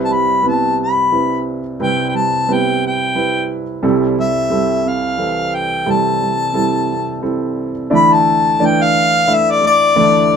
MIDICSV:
0, 0, Header, 1, 4, 480
1, 0, Start_track
1, 0, Tempo, 679502
1, 1273, Time_signature, 3, 2, 24, 8
1, 7322, End_track
2, 0, Start_track
2, 0, Title_t, "Harmonica"
2, 0, Program_c, 0, 22
2, 33, Note_on_c, 0, 81, 49
2, 89, Note_on_c, 0, 83, 73
2, 100, Note_off_c, 0, 81, 0
2, 320, Note_off_c, 0, 83, 0
2, 338, Note_on_c, 0, 81, 57
2, 549, Note_off_c, 0, 81, 0
2, 582, Note_on_c, 0, 83, 68
2, 1020, Note_off_c, 0, 83, 0
2, 1289, Note_on_c, 0, 79, 67
2, 1473, Note_off_c, 0, 79, 0
2, 1473, Note_on_c, 0, 79, 56
2, 1523, Note_on_c, 0, 81, 77
2, 1534, Note_off_c, 0, 79, 0
2, 1785, Note_on_c, 0, 79, 69
2, 1795, Note_off_c, 0, 81, 0
2, 2008, Note_off_c, 0, 79, 0
2, 2027, Note_on_c, 0, 79, 62
2, 2459, Note_off_c, 0, 79, 0
2, 2967, Note_on_c, 0, 76, 68
2, 3453, Note_on_c, 0, 77, 62
2, 3463, Note_off_c, 0, 76, 0
2, 3923, Note_on_c, 0, 79, 73
2, 3933, Note_off_c, 0, 77, 0
2, 4171, Note_on_c, 0, 81, 63
2, 4182, Note_off_c, 0, 79, 0
2, 5122, Note_off_c, 0, 81, 0
2, 5619, Note_on_c, 0, 83, 81
2, 5744, Note_on_c, 0, 81, 76
2, 5755, Note_off_c, 0, 83, 0
2, 6114, Note_on_c, 0, 79, 81
2, 6125, Note_off_c, 0, 81, 0
2, 6233, Note_on_c, 0, 77, 86
2, 6244, Note_off_c, 0, 79, 0
2, 6597, Note_on_c, 0, 76, 76
2, 6608, Note_off_c, 0, 77, 0
2, 6719, Note_on_c, 0, 74, 70
2, 6729, Note_off_c, 0, 76, 0
2, 6815, Note_off_c, 0, 74, 0
2, 6830, Note_on_c, 0, 74, 78
2, 7322, Note_off_c, 0, 74, 0
2, 7322, End_track
3, 0, Start_track
3, 0, Title_t, "Upright piano"
3, 0, Program_c, 1, 0
3, 0, Control_c, 1, 64, 127
3, 0, Note_on_c, 1, 36, 52
3, 0, Note_on_c, 1, 48, 48
3, 0, Note_on_c, 1, 55, 63
3, 0, Note_on_c, 1, 60, 59
3, 0, Note_on_c, 1, 64, 53
3, 0, Note_on_c, 1, 71, 64
3, 158, Note_off_c, 1, 55, 0
3, 159, Note_off_c, 1, 60, 0
3, 160, Note_off_c, 1, 64, 0
3, 162, Note_off_c, 1, 71, 0
3, 300, Note_on_c, 1, 60, 39
3, 303, Note_on_c, 1, 55, 49
3, 303, Note_on_c, 1, 64, 43
3, 305, Note_on_c, 1, 71, 51
3, 643, Note_off_c, 1, 60, 0
3, 644, Note_off_c, 1, 55, 0
3, 644, Note_off_c, 1, 64, 0
3, 645, Note_off_c, 1, 71, 0
3, 790, Note_on_c, 1, 60, 44
3, 791, Note_on_c, 1, 55, 44
3, 793, Note_on_c, 1, 71, 45
3, 794, Note_on_c, 1, 64, 36
3, 1129, Note_off_c, 1, 55, 0
3, 1129, Note_off_c, 1, 60, 0
3, 1130, Note_off_c, 1, 71, 0
3, 1131, Note_off_c, 1, 64, 0
3, 1241, Note_off_c, 1, 36, 0
3, 1241, Note_off_c, 1, 48, 0
3, 1270, Note_on_c, 1, 60, 52
3, 1271, Note_on_c, 1, 55, 52
3, 1272, Note_on_c, 1, 48, 45
3, 1274, Note_on_c, 1, 36, 41
3, 1276, Note_on_c, 1, 64, 48
3, 1276, Note_on_c, 1, 71, 57
3, 1609, Note_off_c, 1, 55, 0
3, 1609, Note_off_c, 1, 60, 0
3, 1611, Note_off_c, 1, 71, 0
3, 1612, Note_off_c, 1, 64, 0
3, 1752, Note_on_c, 1, 55, 48
3, 1754, Note_on_c, 1, 60, 42
3, 1755, Note_on_c, 1, 64, 44
3, 1756, Note_on_c, 1, 71, 51
3, 2088, Note_off_c, 1, 55, 0
3, 2089, Note_off_c, 1, 60, 0
3, 2089, Note_off_c, 1, 64, 0
3, 2090, Note_off_c, 1, 71, 0
3, 2226, Note_on_c, 1, 55, 41
3, 2228, Note_on_c, 1, 60, 39
3, 2229, Note_on_c, 1, 71, 46
3, 2230, Note_on_c, 1, 64, 43
3, 2564, Note_off_c, 1, 55, 0
3, 2565, Note_off_c, 1, 60, 0
3, 2565, Note_off_c, 1, 71, 0
3, 2566, Note_off_c, 1, 64, 0
3, 2681, Note_off_c, 1, 48, 0
3, 2682, Note_off_c, 1, 36, 0
3, 2703, Note_on_c, 1, 36, 54
3, 2704, Note_on_c, 1, 55, 70
3, 2704, Note_on_c, 1, 60, 57
3, 2705, Note_on_c, 1, 48, 51
3, 2706, Note_on_c, 1, 69, 68
3, 2711, Note_on_c, 1, 64, 57
3, 2719, Control_c, 1, 64, 0
3, 2831, Control_c, 1, 64, 127
3, 3042, Note_off_c, 1, 55, 0
3, 3043, Note_off_c, 1, 60, 0
3, 3044, Note_off_c, 1, 69, 0
3, 3046, Note_off_c, 1, 64, 0
3, 3179, Note_on_c, 1, 55, 51
3, 3180, Note_on_c, 1, 60, 44
3, 3186, Note_on_c, 1, 64, 49
3, 3186, Note_on_c, 1, 69, 56
3, 3519, Note_off_c, 1, 55, 0
3, 3519, Note_off_c, 1, 60, 0
3, 3522, Note_off_c, 1, 64, 0
3, 3522, Note_off_c, 1, 69, 0
3, 3659, Note_on_c, 1, 55, 44
3, 3661, Note_on_c, 1, 52, 45
3, 3662, Note_on_c, 1, 60, 37
3, 3666, Note_on_c, 1, 69, 44
3, 3998, Note_off_c, 1, 55, 0
3, 3999, Note_off_c, 1, 52, 0
3, 4000, Note_off_c, 1, 60, 0
3, 4002, Note_off_c, 1, 69, 0
3, 4114, Note_off_c, 1, 36, 0
3, 4114, Note_off_c, 1, 48, 0
3, 4138, Note_on_c, 1, 55, 54
3, 4140, Note_on_c, 1, 36, 42
3, 4140, Note_on_c, 1, 48, 42
3, 4140, Note_on_c, 1, 60, 51
3, 4141, Note_on_c, 1, 64, 46
3, 4143, Note_on_c, 1, 69, 58
3, 4478, Note_off_c, 1, 55, 0
3, 4479, Note_off_c, 1, 60, 0
3, 4479, Note_off_c, 1, 64, 0
3, 4480, Note_off_c, 1, 69, 0
3, 4614, Note_on_c, 1, 55, 46
3, 4619, Note_on_c, 1, 64, 41
3, 4621, Note_on_c, 1, 60, 43
3, 4621, Note_on_c, 1, 69, 55
3, 4958, Note_off_c, 1, 55, 0
3, 4960, Note_off_c, 1, 64, 0
3, 4961, Note_off_c, 1, 60, 0
3, 4961, Note_off_c, 1, 69, 0
3, 5102, Note_on_c, 1, 55, 49
3, 5104, Note_on_c, 1, 60, 43
3, 5106, Note_on_c, 1, 69, 53
3, 5107, Note_on_c, 1, 64, 42
3, 5446, Note_off_c, 1, 55, 0
3, 5447, Note_off_c, 1, 60, 0
3, 5448, Note_off_c, 1, 64, 0
3, 5448, Note_off_c, 1, 69, 0
3, 5562, Note_off_c, 1, 48, 0
3, 5563, Note_off_c, 1, 36, 0
3, 5581, Note_on_c, 1, 62, 56
3, 5582, Note_on_c, 1, 57, 58
3, 5584, Note_on_c, 1, 64, 59
3, 5585, Note_on_c, 1, 38, 45
3, 5585, Note_on_c, 1, 50, 49
3, 5588, Note_on_c, 1, 74, 71
3, 5601, Control_c, 1, 64, 0
3, 5721, Control_c, 1, 64, 127
3, 5924, Note_off_c, 1, 62, 0
3, 5925, Note_off_c, 1, 57, 0
3, 5926, Note_off_c, 1, 64, 0
3, 5928, Note_off_c, 1, 74, 0
3, 6072, Note_on_c, 1, 57, 52
3, 6074, Note_on_c, 1, 62, 50
3, 6076, Note_on_c, 1, 52, 51
3, 6076, Note_on_c, 1, 74, 65
3, 6409, Note_off_c, 1, 57, 0
3, 6411, Note_off_c, 1, 52, 0
3, 6411, Note_off_c, 1, 62, 0
3, 6412, Note_off_c, 1, 74, 0
3, 6551, Note_on_c, 1, 62, 44
3, 6552, Note_on_c, 1, 57, 52
3, 6553, Note_on_c, 1, 64, 46
3, 6558, Note_on_c, 1, 76, 60
3, 6887, Note_off_c, 1, 62, 0
3, 6888, Note_off_c, 1, 57, 0
3, 6888, Note_off_c, 1, 64, 0
3, 6891, Note_off_c, 1, 76, 0
3, 6998, Note_off_c, 1, 38, 0
3, 6998, Note_off_c, 1, 50, 0
3, 7035, Note_on_c, 1, 38, 52
3, 7035, Note_on_c, 1, 57, 62
3, 7036, Note_on_c, 1, 62, 58
3, 7036, Note_on_c, 1, 64, 62
3, 7037, Note_on_c, 1, 74, 78
3, 7038, Note_on_c, 1, 50, 53
3, 7322, Note_off_c, 1, 38, 0
3, 7322, Note_off_c, 1, 50, 0
3, 7322, Note_off_c, 1, 57, 0
3, 7322, Note_off_c, 1, 62, 0
3, 7322, Note_off_c, 1, 64, 0
3, 7322, Note_off_c, 1, 74, 0
3, 7322, End_track
4, 0, Start_track
4, 0, Title_t, "Felt piano"
4, 0, Program_c, 2, 0
4, 63, Note_on_c, 2, 55, 39
4, 298, Note_off_c, 2, 55, 0
4, 308, Note_on_c, 2, 55, 42
4, 311, Note_on_c, 2, 59, 42
4, 317, Note_on_c, 2, 64, 49
4, 551, Note_off_c, 2, 59, 0
4, 778, Note_off_c, 2, 64, 0
4, 788, Note_on_c, 2, 64, 47
4, 1265, Note_off_c, 2, 55, 0
4, 1276, Note_on_c, 2, 55, 53
4, 1503, Note_off_c, 2, 55, 0
4, 1514, Note_on_c, 2, 55, 43
4, 1742, Note_off_c, 2, 55, 0
4, 1748, Note_off_c, 2, 64, 0
4, 1752, Note_on_c, 2, 55, 45
4, 1756, Note_on_c, 2, 59, 46
4, 1758, Note_on_c, 2, 64, 50
4, 1994, Note_off_c, 2, 59, 0
4, 2224, Note_off_c, 2, 64, 0
4, 2234, Note_on_c, 2, 64, 46
4, 2699, Note_off_c, 2, 55, 0
4, 2710, Note_on_c, 2, 55, 66
4, 2759, Note_off_c, 2, 64, 0
4, 2943, Note_off_c, 2, 55, 0
4, 2954, Note_on_c, 2, 55, 45
4, 3177, Note_off_c, 2, 55, 0
4, 3187, Note_on_c, 2, 55, 45
4, 3191, Note_on_c, 2, 60, 45
4, 3414, Note_off_c, 2, 60, 0
4, 3425, Note_on_c, 2, 60, 42
4, 4136, Note_off_c, 2, 55, 0
4, 4146, Note_on_c, 2, 55, 58
4, 4375, Note_off_c, 2, 55, 0
4, 4386, Note_on_c, 2, 55, 42
4, 4616, Note_off_c, 2, 55, 0
4, 4621, Note_off_c, 2, 60, 0
4, 4626, Note_on_c, 2, 55, 47
4, 4632, Note_on_c, 2, 60, 42
4, 4638, Note_on_c, 2, 64, 50
4, 4864, Note_off_c, 2, 60, 0
4, 4875, Note_on_c, 2, 60, 40
4, 5102, Note_off_c, 2, 64, 0
4, 5113, Note_on_c, 2, 64, 45
4, 5594, Note_on_c, 2, 52, 71
4, 5642, Note_off_c, 2, 55, 0
4, 5644, Note_off_c, 2, 64, 0
4, 5646, Note_off_c, 2, 60, 0
4, 6058, Note_off_c, 2, 52, 0
4, 6068, Note_on_c, 2, 52, 54
4, 6074, Note_on_c, 2, 57, 56
4, 6080, Note_on_c, 2, 62, 62
4, 6777, Note_off_c, 2, 57, 0
4, 6788, Note_on_c, 2, 57, 51
4, 7021, Note_off_c, 2, 52, 0
4, 7032, Note_on_c, 2, 52, 74
4, 7322, Note_off_c, 2, 52, 0
4, 7322, Note_off_c, 2, 57, 0
4, 7322, Note_off_c, 2, 62, 0
4, 7322, End_track
0, 0, End_of_file